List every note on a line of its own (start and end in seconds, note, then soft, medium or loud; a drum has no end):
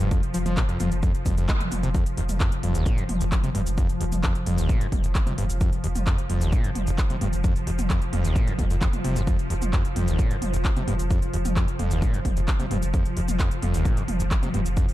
0.00 0.11 F1 medium
0.00 0.09 G2 medium
0.00 1.93 F3 medium
0.00 closed hi-hat medium
0.00 shaker soft
0.11 0.21 F2 medium
0.11 kick loud
0.11 closed hi-hat medium
0.11 shaker soft
0.23 0.34 F1 medium
0.23 closed hi-hat medium
0.23 shaker soft
0.34 0.45 F1 loud
0.34 0.38 F3 medium
0.34 open hi-hat loud
0.34 shaker medium
0.46 0.57 F1 medium
0.46 0.59 F3 medium
0.46 closed hi-hat medium
0.46 mid tom medium
0.46 shaker soft
0.57 0.64 G#2 medium
0.57 kick loud
0.57 clap loud
0.57 closed hi-hat medium
0.57 shaker soft
0.69 0.79 F1 medium
0.69 0.78 F2 medium
0.69 closed hi-hat soft
0.69 shaker soft
0.80 0.91 F1 loud
0.80 0.90 F2 medium
0.80 mid tom medium
0.80 open hi-hat medium
0.80 shaker medium
0.92 1.03 F1 medium
0.92 closed hi-hat medium
0.92 shaker soft
1.03 1.13 F2 medium
1.03 kick loud
1.03 closed hi-hat medium
1.03 shaker soft
1.15 1.25 F1 medium
1.15 closed hi-hat medium
1.15 shaker soft
1.26 1.37 F1 loud
1.26 1.35 F2 medium
1.26 kick medium
1.26 mid tom loud
1.26 open hi-hat loud
1.26 shaker medium
1.37 1.48 F1 medium
1.37 1.47 F2 loud
1.37 closed hi-hat medium
1.37 shaker soft
1.49 1.53 G#3 medium
1.49 kick loud
1.49 clap loud
1.49 closed hi-hat medium
1.49 shaker soft
1.60 1.71 F1 medium
1.60 closed hi-hat medium
1.60 mid tom medium
1.60 shaker soft
1.72 1.83 F1 loud
1.72 mid tom medium
1.72 open hi-hat medium
1.72 shaker medium
1.83 1.94 F1 medium
1.83 1.89 C3 medium
1.83 closed hi-hat medium
1.83 shaker soft
1.94 2.04 F2 medium
1.94 14.94 F3 medium
1.94 kick loud
1.94 closed hi-hat medium
1.94 shaker medium
2.06 2.17 F1 medium
2.06 closed hi-hat medium
2.06 shaker soft
2.17 2.28 F1 loud
2.17 2.21 D#2 loud
2.17 open hi-hat loud
2.29 2.40 F1 medium
2.29 closed hi-hat medium
2.29 mid tom medium
2.29 shaker medium
2.40 2.50 F2 medium
2.40 kick loud
2.40 clap loud
2.40 closed hi-hat medium
2.40 shaker medium
2.52 2.63 F1 medium
2.52 closed hi-hat medium
2.52 shaker soft
2.63 2.74 F1 loud
2.63 2.76 F2 medium
2.63 mid tom medium
2.63 open hi-hat loud
2.75 2.86 F1 medium
2.75 2.88 D#2 medium
2.75 closed hi-hat medium
2.75 shaker medium
2.86 2.99 A#2 medium
2.86 kick loud
2.86 closed hi-hat medium
2.86 shaker medium
2.98 3.08 F1 medium
2.98 3.04 F2 medium
2.98 closed hi-hat medium
2.98 shaker soft
3.09 3.20 F1 loud
3.09 mid tom medium
3.09 open hi-hat loud
3.21 3.24 F1 medium
3.21 3.32 F1 medium
3.21 closed hi-hat medium
3.21 shaker medium
3.32 kick loud
3.32 clap loud
3.32 closed hi-hat medium
3.32 shaker medium
3.44 3.54 F1 medium
3.44 3.50 C3 medium
3.44 closed hi-hat medium
3.44 mid tom medium
3.44 shaker soft
3.55 3.66 F1 loud
3.55 3.61 G2 loud
3.55 mid tom medium
3.55 open hi-hat loud
3.67 3.77 F1 medium
3.67 closed hi-hat medium
3.67 shaker medium
3.78 3.87 F2 medium
3.78 kick loud
3.78 closed hi-hat medium
3.78 shaker medium
3.89 4.00 F1 medium
3.89 closed hi-hat medium
3.89 shaker soft
4.01 4.12 F1 loud
4.01 4.04 D#2 loud
4.01 open hi-hat loud
4.12 4.23 F1 medium
4.12 closed hi-hat medium
4.12 mid tom medium
4.12 shaker medium
4.23 4.33 F2 medium
4.23 kick loud
4.23 clap loud
4.23 closed hi-hat medium
4.23 shaker medium
4.35 4.46 F1 medium
4.35 closed hi-hat medium
4.35 shaker soft
4.46 4.58 F1 loud
4.46 4.60 F2 medium
4.46 mid tom medium
4.46 open hi-hat loud
4.58 4.69 F1 medium
4.58 4.71 D#2 medium
4.58 closed hi-hat medium
4.58 shaker medium
4.69 4.82 A#2 medium
4.69 kick loud
4.69 closed hi-hat medium
4.69 shaker soft
4.81 4.92 F1 medium
4.81 4.87 F2 medium
4.81 closed hi-hat medium
4.81 shaker soft
4.92 5.03 F1 loud
4.92 kick medium
4.92 mid tom medium
4.92 open hi-hat loud
5.04 5.15 F1 medium
5.04 5.08 F1 medium
5.04 closed hi-hat medium
5.04 shaker medium
5.15 kick loud
5.15 clap loud
5.15 closed hi-hat medium
5.15 shaker medium
5.27 5.37 F1 medium
5.27 5.33 C3 medium
5.27 closed hi-hat medium
5.27 mid tom medium
5.27 shaker soft
5.38 5.49 F1 loud
5.38 5.44 G2 loud
5.38 mid tom medium
5.38 open hi-hat loud
5.50 5.61 F1 medium
5.50 closed hi-hat medium
5.50 shaker medium
5.61 5.71 F2 medium
5.61 kick loud
5.61 closed hi-hat medium
5.61 shaker medium
5.73 5.83 F1 medium
5.73 closed hi-hat medium
5.73 shaker soft
5.84 5.95 F1 loud
5.84 5.88 D#2 loud
5.84 open hi-hat loud
5.95 6.06 F1 medium
5.95 closed hi-hat medium
5.95 mid tom medium
5.95 shaker medium
6.07 6.16 F2 medium
6.07 kick loud
6.07 clap loud
6.07 closed hi-hat medium
6.07 shaker soft
6.18 6.29 F1 medium
6.18 closed hi-hat medium
6.18 shaker soft
6.30 6.41 F1 loud
6.30 6.43 F2 medium
6.30 mid tom medium
6.30 open hi-hat loud
6.41 6.52 F1 medium
6.41 6.54 D#2 medium
6.41 closed hi-hat medium
6.41 shaker medium
6.53 6.66 A#2 medium
6.53 kick loud
6.53 closed hi-hat medium
6.53 shaker medium
6.64 6.75 F1 medium
6.64 6.70 F2 medium
6.64 closed hi-hat medium
6.64 shaker soft
6.75 6.86 F1 loud
6.75 mid tom medium
6.75 open hi-hat loud
6.87 6.98 F1 medium
6.87 6.91 F1 medium
6.87 closed hi-hat medium
6.87 shaker medium
6.98 kick loud
6.98 clap loud
6.98 closed hi-hat medium
6.98 shaker medium
7.10 7.21 F1 medium
7.10 7.16 C3 medium
7.10 closed hi-hat medium
7.10 mid tom medium
7.10 shaker soft
7.21 7.32 F1 loud
7.21 7.28 G2 loud
7.21 mid tom medium
7.21 open hi-hat loud
7.33 7.44 F1 medium
7.33 closed hi-hat medium
7.33 shaker medium
7.44 7.54 F2 medium
7.44 kick loud
7.44 closed hi-hat medium
7.44 shaker medium
7.56 7.66 F1 medium
7.56 open hi-hat medium
7.56 shaker soft
7.67 7.78 F1 loud
7.67 7.71 D#2 loud
7.67 open hi-hat loud
7.79 7.90 F1 medium
7.79 closed hi-hat medium
7.79 mid tom medium
7.79 shaker medium
7.90 8.00 F2 medium
7.90 kick loud
7.90 clap loud
7.90 closed hi-hat medium
7.90 shaker soft
8.02 8.12 F1 medium
8.02 closed hi-hat medium
8.02 shaker soft
8.13 8.24 F1 loud
8.13 8.26 F2 medium
8.13 mid tom medium
8.13 open hi-hat loud
8.24 8.35 F1 medium
8.24 8.37 D#2 medium
8.24 closed hi-hat medium
8.24 shaker medium
8.36 8.49 A#2 medium
8.36 kick loud
8.36 closed hi-hat medium
8.36 shaker medium
8.47 8.58 F1 medium
8.47 8.54 F2 medium
8.47 closed hi-hat medium
8.47 shaker soft
8.59 8.70 F1 loud
8.59 8.65 F2 medium
8.59 kick medium
8.59 mid tom loud
8.59 open hi-hat loud
8.70 8.81 F1 medium
8.70 8.77 F2 medium
8.70 closed hi-hat medium
8.70 shaker medium
8.82 8.88 F2 medium
8.82 kick loud
8.82 clap loud
8.82 closed hi-hat medium
8.82 shaker medium
8.93 9.04 F1 medium
8.93 closed hi-hat medium
8.93 mid tom medium
8.93 shaker soft
9.04 9.15 F1 loud
9.04 9.18 C3 medium
9.04 mid tom medium
9.04 open hi-hat loud
9.16 9.27 F1 medium
9.16 9.22 F2 loud
9.16 closed hi-hat medium
9.16 shaker medium
9.27 9.37 F2 medium
9.27 kick loud
9.27 closed hi-hat medium
9.27 shaker medium
9.39 9.50 F1 medium
9.39 closed hi-hat medium
9.39 shaker soft
9.50 9.61 F1 loud
9.50 9.54 D#2 loud
9.50 open hi-hat loud
9.62 9.73 F1 medium
9.62 closed hi-hat medium
9.62 mid tom medium
9.62 shaker medium
9.73 9.83 F2 medium
9.73 kick loud
9.73 clap loud
9.73 closed hi-hat medium
9.73 shaker medium
9.85 9.96 F1 medium
9.85 closed hi-hat medium
9.85 shaker soft
9.96 10.07 F1 loud
9.96 10.09 F2 medium
9.96 mid tom medium
9.96 open hi-hat loud
10.08 10.19 F1 medium
10.08 10.20 D#2 medium
10.08 closed hi-hat medium
10.08 shaker medium
10.19 10.32 A#2 medium
10.19 kick loud
10.19 closed hi-hat medium
10.19 shaker medium
10.31 10.41 F1 medium
10.31 10.37 F2 medium
10.31 closed hi-hat medium
10.31 shaker soft
10.42 10.53 F1 loud
10.42 mid tom loud
10.42 open hi-hat loud
10.54 10.57 F1 medium
10.54 10.65 F1 medium
10.54 closed hi-hat medium
10.54 shaker medium
10.65 kick loud
10.65 clap loud
10.65 closed hi-hat medium
10.65 shaker medium
10.76 10.87 F1 medium
10.76 10.83 C3 medium
10.76 closed hi-hat medium
10.76 mid tom medium
10.76 shaker soft
10.88 10.99 F1 loud
10.88 10.94 G2 loud
10.88 mid tom medium
10.88 open hi-hat loud
10.99 11.10 F1 medium
10.99 closed hi-hat medium
10.99 shaker medium
11.11 11.20 F2 medium
11.11 kick loud
11.11 closed hi-hat medium
11.11 shaker medium
11.22 11.33 F1 medium
11.22 closed hi-hat medium
11.22 shaker soft
11.33 11.45 F1 loud
11.33 11.37 D#2 loud
11.33 open hi-hat loud
11.45 11.56 F1 medium
11.45 closed hi-hat medium
11.45 mid tom medium
11.45 shaker medium
11.56 11.66 F2 medium
11.56 kick loud
11.56 clap loud
11.56 closed hi-hat medium
11.56 shaker medium
11.68 11.79 F1 medium
11.68 closed hi-hat medium
11.68 shaker soft
11.79 11.90 F1 loud
11.79 11.92 F2 medium
11.79 mid tom medium
11.79 open hi-hat loud
11.91 12.02 F1 medium
11.91 12.04 D#2 medium
11.91 closed hi-hat medium
11.91 shaker medium
12.02 12.15 A#2 medium
12.02 kick loud
12.02 closed hi-hat medium
12.02 shaker medium
12.14 12.24 F1 medium
12.14 12.20 F2 medium
12.14 closed hi-hat medium
12.14 shaker soft
12.25 12.36 F1 loud
12.25 kick medium
12.25 mid tom loud
12.25 open hi-hat loud
12.37 12.48 F1 medium
12.37 12.40 F1 medium
12.37 closed hi-hat medium
12.37 shaker medium
12.48 kick loud
12.48 clap loud
12.48 closed hi-hat medium
12.48 shaker medium
12.60 12.70 F1 medium
12.60 12.66 C3 medium
12.60 closed hi-hat medium
12.60 mid tom medium
12.60 shaker soft
12.71 12.82 F1 loud
12.71 12.77 G2 loud
12.71 mid tom loud
12.71 open hi-hat loud
12.83 12.94 F1 medium
12.83 closed hi-hat medium
12.83 shaker medium
12.94 13.03 F2 medium
12.94 kick loud
12.94 closed hi-hat medium
12.94 shaker medium
13.05 13.16 F1 medium
13.05 closed hi-hat medium
13.05 shaker soft
13.17 13.28 F1 loud
13.17 13.20 D#2 loud
13.17 open hi-hat loud
13.28 13.39 F1 medium
13.28 closed hi-hat medium
13.28 mid tom medium
13.28 shaker medium
13.39 13.49 F2 medium
13.39 kick loud
13.39 clap loud
13.39 closed hi-hat medium
13.39 shaker medium
13.51 13.62 F1 medium
13.51 closed hi-hat medium
13.51 shaker soft
13.62 13.74 F1 loud
13.62 13.76 F2 medium
13.62 mid tom medium
13.62 open hi-hat loud
13.74 13.85 F1 medium
13.74 13.87 D#2 medium
13.74 closed hi-hat medium
13.74 shaker medium
13.85 13.99 A#2 medium
13.85 kick loud
13.85 closed hi-hat medium
13.85 shaker medium
13.97 14.08 F1 medium
13.97 14.03 F2 medium
13.97 closed hi-hat medium
13.97 shaker soft
14.08 14.19 F1 loud
14.08 mid tom loud
14.08 open hi-hat loud
14.20 14.31 F1 medium
14.20 14.24 F1 medium
14.20 closed hi-hat medium
14.20 shaker medium
14.31 kick loud
14.31 clap loud
14.31 closed hi-hat medium
14.31 shaker medium
14.43 14.53 F1 medium
14.43 14.49 C3 medium
14.43 closed hi-hat medium
14.43 mid tom medium
14.43 shaker soft
14.54 14.65 F1 loud
14.54 14.60 G2 medium
14.54 mid tom medium
14.54 open hi-hat loud
14.66 14.77 F1 medium
14.66 closed hi-hat medium
14.66 shaker medium
14.77 14.87 F2 medium
14.77 kick loud
14.77 closed hi-hat medium
14.77 shaker medium
14.89 14.94 F1 medium
14.89 open hi-hat medium
14.89 shaker soft